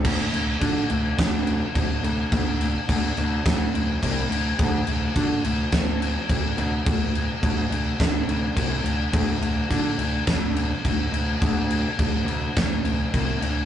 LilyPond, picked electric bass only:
\new Staff \with { instrumentName = "Picked electric bass" } { \clef bass \time 4/4 \key c \mixolydian \tempo 4 = 105 d,8 d,8 d8 d,8 d,4 d,8 d,8 | d,4 d,8 d,8 d,8 d,8 c,8 d,8 | d,8 d,8 d8 d,8 d,4 d,8 d,8 | d,4 d,8 d,8 d,8 d,8 c,8 d,8 |
d,8 d,8 d8 d,8 d,4 d,8 d,8 | d,4 d,8 d,8 d,8 d,8 c,8 d,8 | }